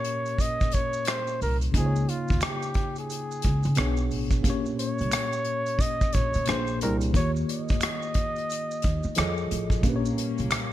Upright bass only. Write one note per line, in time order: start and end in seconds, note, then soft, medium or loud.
1.42 1.69 C2 medium
1.75 2.02 C#2 medium
2.31 2.41 D#2 medium
3.45 3.61 C#2 medium
3.65 3.75 C#3 loud
3.79 4.12 B1 medium
4.12 4.39 A1 medium
4.45 4.72 A#1 medium
5.01 5.11 C2 medium
6.16 6.31 A#1 medium
6.35 6.45 A#2 medium
6.48 6.82 A#1 loud
6.82 7.09 C2 medium
7.15 7.42 D#2 medium
7.71 7.81 F2 medium
8.85 9.01 D#2 medium
9.05 9.19 D#3 medium
9.18 9.45 F2 medium
9.52 9.78 A1 medium
9.84 10.11 A#1 medium
10.39 10.50 C2 medium